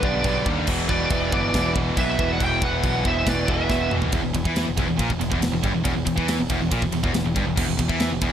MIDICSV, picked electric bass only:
0, 0, Header, 1, 2, 480
1, 0, Start_track
1, 0, Key_signature, 1, "minor"
1, 0, Tempo, 431344
1, 754, Time_signature, 4, 2, 24, 8
1, 9262, End_track
2, 0, Start_track
2, 0, Title_t, "Picked electric bass"
2, 0, Program_c, 0, 34
2, 29, Note_on_c, 0, 35, 99
2, 231, Note_off_c, 0, 35, 0
2, 274, Note_on_c, 0, 35, 90
2, 474, Note_off_c, 0, 35, 0
2, 508, Note_on_c, 0, 39, 96
2, 711, Note_off_c, 0, 39, 0
2, 755, Note_on_c, 0, 28, 102
2, 1156, Note_off_c, 0, 28, 0
2, 1228, Note_on_c, 0, 28, 108
2, 1432, Note_off_c, 0, 28, 0
2, 1476, Note_on_c, 0, 31, 96
2, 1676, Note_off_c, 0, 31, 0
2, 1717, Note_on_c, 0, 28, 103
2, 2117, Note_off_c, 0, 28, 0
2, 2190, Note_on_c, 0, 35, 89
2, 2393, Note_off_c, 0, 35, 0
2, 2437, Note_on_c, 0, 28, 99
2, 2637, Note_off_c, 0, 28, 0
2, 2676, Note_on_c, 0, 28, 103
2, 2876, Note_off_c, 0, 28, 0
2, 2911, Note_on_c, 0, 28, 99
2, 3114, Note_off_c, 0, 28, 0
2, 3153, Note_on_c, 0, 35, 92
2, 3355, Note_off_c, 0, 35, 0
2, 3402, Note_on_c, 0, 28, 93
2, 3600, Note_off_c, 0, 28, 0
2, 3633, Note_on_c, 0, 28, 98
2, 3835, Note_off_c, 0, 28, 0
2, 3874, Note_on_c, 0, 28, 95
2, 4076, Note_off_c, 0, 28, 0
2, 4111, Note_on_c, 0, 28, 85
2, 4313, Note_off_c, 0, 28, 0
2, 4368, Note_on_c, 0, 28, 90
2, 4564, Note_off_c, 0, 28, 0
2, 4597, Note_on_c, 0, 28, 107
2, 4709, Note_off_c, 0, 28, 0
2, 4724, Note_on_c, 0, 28, 85
2, 4826, Note_off_c, 0, 28, 0
2, 4833, Note_on_c, 0, 28, 86
2, 4946, Note_off_c, 0, 28, 0
2, 4955, Note_on_c, 0, 40, 88
2, 5179, Note_off_c, 0, 40, 0
2, 5192, Note_on_c, 0, 28, 82
2, 5306, Note_off_c, 0, 28, 0
2, 5318, Note_on_c, 0, 28, 98
2, 5429, Note_off_c, 0, 28, 0
2, 5439, Note_on_c, 0, 28, 85
2, 5544, Note_off_c, 0, 28, 0
2, 5551, Note_on_c, 0, 34, 91
2, 5665, Note_off_c, 0, 34, 0
2, 5678, Note_on_c, 0, 28, 77
2, 5780, Note_off_c, 0, 28, 0
2, 5786, Note_on_c, 0, 28, 82
2, 5902, Note_off_c, 0, 28, 0
2, 5918, Note_on_c, 0, 28, 93
2, 6028, Note_off_c, 0, 28, 0
2, 6042, Note_on_c, 0, 28, 73
2, 6147, Note_off_c, 0, 28, 0
2, 6153, Note_on_c, 0, 28, 80
2, 6266, Note_off_c, 0, 28, 0
2, 6280, Note_on_c, 0, 31, 98
2, 6389, Note_off_c, 0, 31, 0
2, 6403, Note_on_c, 0, 28, 83
2, 6511, Note_off_c, 0, 28, 0
2, 6519, Note_on_c, 0, 28, 107
2, 6629, Note_off_c, 0, 28, 0
2, 6637, Note_on_c, 0, 28, 80
2, 6742, Note_off_c, 0, 28, 0
2, 6749, Note_on_c, 0, 28, 88
2, 6863, Note_off_c, 0, 28, 0
2, 6872, Note_on_c, 0, 40, 92
2, 7096, Note_off_c, 0, 40, 0
2, 7123, Note_on_c, 0, 28, 83
2, 7225, Note_off_c, 0, 28, 0
2, 7232, Note_on_c, 0, 28, 102
2, 7340, Note_off_c, 0, 28, 0
2, 7347, Note_on_c, 0, 28, 88
2, 7461, Note_off_c, 0, 28, 0
2, 7470, Note_on_c, 0, 34, 96
2, 7583, Note_off_c, 0, 34, 0
2, 7593, Note_on_c, 0, 28, 78
2, 7704, Note_off_c, 0, 28, 0
2, 7710, Note_on_c, 0, 28, 93
2, 7823, Note_off_c, 0, 28, 0
2, 7834, Note_on_c, 0, 28, 100
2, 7926, Note_off_c, 0, 28, 0
2, 7932, Note_on_c, 0, 28, 81
2, 8053, Note_off_c, 0, 28, 0
2, 8067, Note_on_c, 0, 28, 85
2, 8180, Note_off_c, 0, 28, 0
2, 8195, Note_on_c, 0, 31, 103
2, 8301, Note_off_c, 0, 31, 0
2, 8308, Note_on_c, 0, 28, 85
2, 8421, Note_off_c, 0, 28, 0
2, 8427, Note_on_c, 0, 28, 98
2, 8541, Note_off_c, 0, 28, 0
2, 8553, Note_on_c, 0, 28, 78
2, 8663, Note_off_c, 0, 28, 0
2, 8669, Note_on_c, 0, 28, 92
2, 8778, Note_off_c, 0, 28, 0
2, 8784, Note_on_c, 0, 40, 97
2, 9010, Note_off_c, 0, 40, 0
2, 9040, Note_on_c, 0, 28, 86
2, 9141, Note_off_c, 0, 28, 0
2, 9148, Note_on_c, 0, 28, 98
2, 9260, Note_off_c, 0, 28, 0
2, 9262, End_track
0, 0, End_of_file